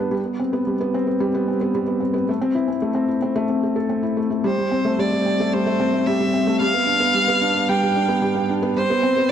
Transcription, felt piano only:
0.00 0.11 G3 medium
0.00 0.14 B3 medium
0.00 0.14 D4 medium
0.11 0.19 G3 medium
0.25 0.38 B3 medium
0.40 0.52 C4 medium
0.53 0.60 B3 medium
0.67 0.74 G3 medium
0.81 0.93 B3 medium
0.94 1.07 C4 medium
1.07 1.15 B3 medium
1.20 1.28 G3 loud
1.34 1.47 B3 medium
1.48 1.55 C4 medium
1.61 1.69 B3 medium
1.75 1.82 G3 medium
1.88 2.00 B3 medium
2.00 2.14 C4 medium
2.14 2.22 B3 medium
2.29 2.36 A3 medium
2.41 2.54 C4 medium
2.55 2.68 E4 medium
2.68 2.76 C4 medium
2.82 2.90 A3 medium
2.95 3.08 C4 medium
3.08 3.17 E4 medium
3.22 3.30 C4 medium
3.36 3.44 A3 medium
3.49 3.63 C4 medium
3.63 3.76 A3 medium
3.76 3.84 A4 medium
3.89 4.03 C4 medium
4.03 4.16 E4 medium
4.17 4.29 A3 medium
4.30 4.43 A3 medium
4.44 4.52 G3 loud
4.58 4.66 G3 medium
4.71 4.79 C4 medium
4.85 4.93 A3 medium
4.99 5.06 G3 medium
5.13 5.25 A3 medium
5.26 5.39 C4 medium
5.40 5.47 A3 medium
5.53 5.61 G3 medium
5.66 5.79 A3 medium
5.80 5.93 C4 medium
5.93 6.01 A3 medium
6.07 6.15 G3 medium
6.20 6.28 G3 medium
6.34 6.41 C4 medium
6.47 6.55 A3 medium
6.61 6.68 G3 medium
6.74 6.87 B3 medium
6.87 7.00 D4 medium
7.00 7.08 B3 medium
7.14 7.22 G3 medium
7.28 7.41 B3 loud
7.41 7.54 D4 medium
7.55 7.63 B3 medium
7.69 7.77 G3 loud
7.83 7.90 G3 medium
7.96 8.04 D4 medium
8.09 8.17 B3 medium
8.22 8.30 G3 medium
8.35 8.49 B3 medium
8.49 8.62 D4 medium
8.62 8.71 B3 loud
8.77 8.85 G3 medium
8.90 9.03 B3 medium
9.03 9.16 C4 medium
9.17 9.25 B3 medium

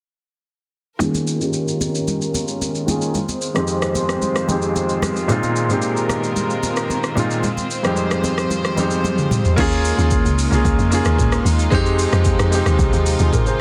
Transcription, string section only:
1.00 9.54 D#3 medium
1.00 9.54 G#3 medium
1.00 3.13 C#4 medium
1.00 9.54 F4 medium
1.00 3.13 A#4 medium
3.14 5.27 C4 medium
3.14 5.27 C5 medium
5.29 9.54 C4 medium
5.29 7.41 A#4 medium
7.43 9.55 C5 medium
9.58 11.70 C#3 medium
9.58 13.61 G#3 medium
9.58 11.70 A#3 medium
9.58 13.61 D#4 medium
9.58 13.61 F4 medium
11.72 13.61 C3 medium
11.72 13.61 F3 medium

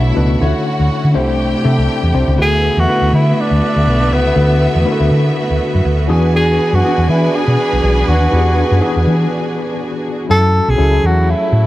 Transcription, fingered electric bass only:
0.00 0.11 B1 medium
0.16 0.35 C#2 medium
0.41 0.52 D2 loud
0.80 0.88 D2 medium
0.91 muted fingered electric bass stroke soft
1.04 1.13 D3 medium
1.15 1.53 C2 medium
1.65 1.76 C3 loud
1.78 1.87 C2 medium
2.03 2.12 E2 medium
2.15 2.25 C2 medium
2.28 2.36 C#2 medium
2.38 2.68 D2 medium
2.77 2.86 E2 medium
3.02 3.10 D2 medium
3.13 3.32 D3 medium
3.51 3.60 D2 medium
3.76 3.85 D2 medium
3.87 4.12 B1 loud
4.12 4.31 C#2 medium
4.36 4.66 D2 loud
4.75 4.84 E2 medium
5.00 5.09 D2 medium
5.11 5.30 D3 medium
5.50 5.58 D2 medium
5.75 5.83 F#2 medium
5.85 6.10 D2 loud
6.10 6.58 E2 medium
6.73 6.81 F#2 medium
6.98 7.06 E2 medium
7.09 7.28 E3 medium
7.48 7.56 B2 medium
7.73 7.81 B1 medium
7.84 8.02 B1 loud
8.08 8.26 D#2 medium
8.33 8.62 E2 medium
8.71 8.79 F#2 loud
8.96 9.04 E2 medium
9.07 9.26 E3 medium
10.30 10.59 F#2 loud
10.68 10.76 B1 medium
10.79 10.98 C#2 loud
11.03 11.33 E2 medium
11.52 11.67 A2 loud

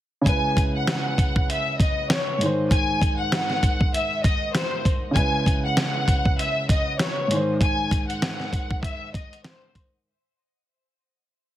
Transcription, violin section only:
0.26 0.71 G#5 loud
0.76 1.45 F#5 medium
1.51 1.77 E5 medium
1.79 2.07 D#5 medium
2.11 2.38 C#5 medium
2.71 3.16 G#5 loud
3.20 3.90 F#5 medium
3.95 4.22 E5 medium
4.24 4.51 D#5 medium
4.55 4.82 C5 medium
5.14 5.61 G#5 loud
5.66 6.35 F#5 medium
6.39 6.66 E5 medium
6.70 6.97 D#5 medium
7.00 7.27 C#5 medium
7.62 8.07 G#5 loud
8.08 8.79 F#5 medium
8.83 9.11 E5 medium
9.15 9.42 D#5 medium
9.45 9.72 C5 medium

